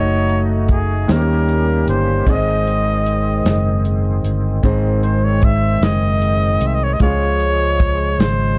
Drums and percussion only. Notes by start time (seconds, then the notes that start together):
0.29 closed hi-hat
0.68 kick, closed hi-hat
1.09 snare, closed hi-hat
1.49 closed hi-hat
1.88 closed hi-hat
2.27 kick, closed hi-hat
2.67 closed hi-hat
3.06 closed hi-hat
3.46 snare, closed hi-hat
3.85 closed hi-hat
4.24 closed hi-hat
4.63 kick, closed hi-hat
5.03 closed hi-hat
5.42 kick, closed hi-hat
5.83 snare, closed hi-hat
6.22 closed hi-hat
6.61 closed hi-hat
7.00 kick, closed hi-hat
7.40 closed hi-hat
7.80 kick, closed hi-hat
8.20 snare, closed hi-hat